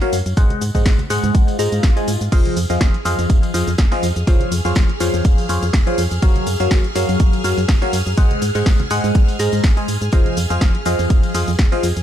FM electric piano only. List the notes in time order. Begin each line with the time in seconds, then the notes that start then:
0.02 F#3 F#4 A#4 C#5 F5
0.37 G#3 G#4 C5 D#5 F#5
0.75 G#3 G#4 C5 D#5 F#5
1.10 G#3 G#4 C5 D#5 F#5
1.59 G#3 G#4 C5 D#5 A#5
1.97 G#3 G#4 C5 D#5 G#5
2.32 F3 G#4 C5 D#5 F5
2.70 F3 G#4 C5 D#5 F5
3.05 F3 G#4 C5 D#5 F5
3.54 F3 G#4 C5 D#5 F5
3.92 F3 G#4 C5 D#5 F5
4.27 F3 G#4 C5 C#5 F5
4.65 F3 G#4 C5 C#5 F5
5.00 F3 G#4 C5 C#5 F5
5.49 F3 G#4 C5 C#5 F5
5.87 F3 G#4 C5 C#5 F5
6.22 F#3 F#4 A#4 C#5 F5
6.60 F#3 F#4 A#4 C#5 F5
6.95 F#3 F#4 A#4 C#5 F5
7.44 F#3 F#4 A#4 C#5 F5
7.82 F#3 F#4 A#4 C#5 F5
8.17 G#3 G#4 C5 D#5 F#5
8.55 G#3 G#4 C5 D#5 F#5
8.91 G#3 G#4 C5 D#5 F#5
9.39 G#3 G#4 C5 D#5 A#5
9.77 G#3 G#4 C5 D#5 G#5
10.13 F3 G#4 C5 D#5 F5
10.50 F3 G#4 C5 D#5 F5
10.86 F3 G#4 C5 D#5 F5
11.34 F3 G#4 C5 D#5 F5
11.72 F3 G#4 C5 D#5 F5